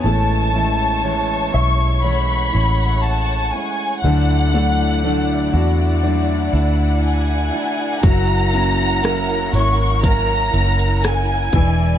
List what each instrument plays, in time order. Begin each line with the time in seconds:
0.03 fingered electric bass A1, steel-string acoustic guitar A2 E3 G#3 C#4 E4, grand piano A3, string section C#5 A5 C#6, violin section A5
0.53 steel-string acoustic guitar A2 E3 G#3 C#4 E4, grand piano E4
1.03 steel-string acoustic guitar A2 E3 G#3 C#4 E4, grand piano C#5
1.52 fingered electric bass B1, steel-string acoustic guitar G#3 C#4 E4, grand piano E5, violin section C#6
2.03 steel-string acoustic guitar E3 G#3 C#4 E4, grand piano C#5, string section F#5, violin section B5
2.53 fingered electric bass A1, steel-string acoustic guitar G#3 C#4 E4
3.03 violin section A5
3.51 steel-string acoustic guitar C#4 E4, violin section G#5
3.56 steel-string acoustic guitar G#3
4.02 fingered electric bass D2, steel-string acoustic guitar D3 F#3 A3 D4 E4, grand piano D3, string section E4 D5 F#5, violin section F#5
4.53 steel-string acoustic guitar D3 F#3 A3 D4 E4, grand piano A3
5.04 steel-string acoustic guitar D3 F#3 A3 D4 E4, grand piano D4
5.53 fingered electric bass E2, steel-string acoustic guitar A3 D4 E4, grand piano F#4
6.03 steel-string acoustic guitar F#3 A3 D4 E4, grand piano D4
6.53 fingered electric bass D2, steel-string acoustic guitar A3 D4 E4
7.05 violin section G#5
7.53 steel-string acoustic guitar A3 D4 E4
8.03 fingered electric bass F#1, steel-string acoustic guitar F#3 A#3 C#4 E4, grand piano F#3, string section A#4, violin section A#5, kick, closed hi-hat
8.53 steel-string acoustic guitar F#3 A#3 C#4 E4, grand piano C#4, closed hi-hat
9.02 steel-string acoustic guitar F#3 A#3 C#4 E4, grand piano A#4, cross-stick, closed hi-hat
9.52 fingered electric bass G#1, steel-string acoustic guitar A#3 C#4 E4, grand piano C#5, violin section C#6, closed hi-hat
10.02 steel-string acoustic guitar F#3 A#3 C#4 E4, grand piano A#4, violin section A#5, kick, closed hi-hat
10.53 fingered electric bass F#1, steel-string acoustic guitar A#3 C#4 E4, closed hi-hat
10.79 closed hi-hat
11.04 violin section G#5, cross-stick, closed hi-hat
11.53 fingered electric bass E1, grand piano E3, steel-string acoustic guitar E3 G#3 D4 E4, string section D5 G#5, kick, closed hi-hat